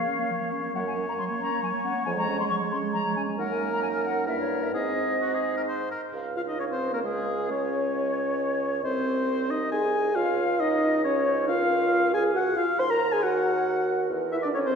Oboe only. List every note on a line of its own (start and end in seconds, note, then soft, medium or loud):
0.00 0.71 C#5 soft
0.75 3.22 C#5 soft
3.39 4.23 A#4 soft
4.27 4.72 A#4 soft
4.74 5.15 G#4 soft
5.21 5.36 F#4 soft
5.34 5.57 G#4 soft
5.57 5.62 A#4 soft
5.68 5.90 C5 medium
5.92 6.02 A#4 soft
6.37 6.42 F5 soft
6.48 6.59 D#5 soft
6.60 6.65 C#5 soft
6.71 6.93 C5 soft
6.94 6.99 A#4 soft
7.05 7.50 G#4 soft
7.51 8.82 C#5 soft
8.84 9.52 C5 medium
9.51 9.71 D#5 soft
9.72 10.17 G#5 medium
10.15 10.62 F5 medium
10.60 11.04 D#5 medium
11.04 11.47 C#5 medium
11.48 12.12 F5 medium
12.14 12.24 G#5 medium
12.36 12.59 F#5 medium
12.57 12.81 F5 medium
12.80 12.92 C6 medium
12.90 13.14 A#5 medium
13.12 13.24 G#5 medium
13.23 14.10 F#5 medium
14.32 14.37 E5 medium
14.42 14.48 D5 medium
14.54 14.60 C#5 medium
14.66 14.75 C5 medium